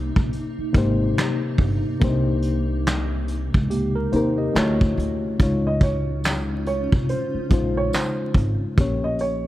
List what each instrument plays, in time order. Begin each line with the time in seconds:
Already playing: upright bass C2, reed electric piano C3 A#3 D#4 G4 C5, ambient pad C3 A#3 D#4
0.16 upright bass A#1, kick
0.33 closed hi-hat
0.58 muted upright bass stroke
0.73 upright bass G#1, reed electric piano C3 A#3 D#4 G4, kick, closed hi-hat
0.78 reed electric piano C5
1.18 snare, clap, closed hi-hat
1.58 upright bass G1, kick, open hi-hat
2.00 upright bass C2, reed electric piano C3 A#3 D4 G4, kick, closed hi-hat
2.04 reed electric piano C5
2.09 reed electric piano D#4
2.42 closed hi-hat
2.86 snare, clap, closed hi-hat
3.28 closed hi-hat
3.54 upright bass C#2, kick
3.70 tine electric piano A#3 G4, closed hi-hat
3.95 tine electric piano A#4
4.11 upright bass D#2, reed electric piano C3 A#3 D#4 G4, tine electric piano D#4 C5, closed hi-hat
4.16 reed electric piano A#4
4.38 tine electric piano G4 D#5
4.53 upright bass D2, reed electric piano D3 A3 E4 F#4, snare, clap, closed hi-hat
4.58 reed electric piano C#5
4.81 kick
4.97 upright bass D2, closed hi-hat
5.38 upright bass C#2, reed electric piano C#3 G#3 D#4 F4, ambient pad C#3 C#4 D#4 F4, kick, closed hi-hat
5.43 reed electric piano C#5
5.67 upright piano D#5
5.81 upright piano C#5, kick, closed hi-hat
6.24 snare, clap, closed hi-hat, tambourine
6.66 upright piano C#5, closed hi-hat
6.92 upright bass C2, kick
7.09 upright piano C5, closed hi-hat
7.34 muted upright bass stroke
7.49 upright bass A#1, reed electric piano C#3 G#3 D#4 F4, kick, closed hi-hat
7.54 reed electric piano C5
7.77 upright piano C#5
7.93 upright piano C5, snare, clap, closed hi-hat, tambourine
8.34 upright bass G#1, kick, closed hi-hat
8.76 upright bass A#1, reed electric piano A#2 A#3 C#4 G4, kick, closed hi-hat
8.81 reed electric piano C#5
9.04 upright piano D#5
9.19 upright piano C#5, closed hi-hat